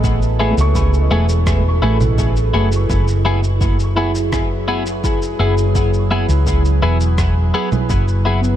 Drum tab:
SH |xx-xxx-xx--xxx-x|xx-xxx-xx--xxx-x|xx-xxx-xx--xxx-x|
SD |--------r-------|--------r-------|--------r-------|
CG |-----------O----|----------------|-----------O----|
BD |o---o---o---o---|o---o---o---o---|o---o---o---o---|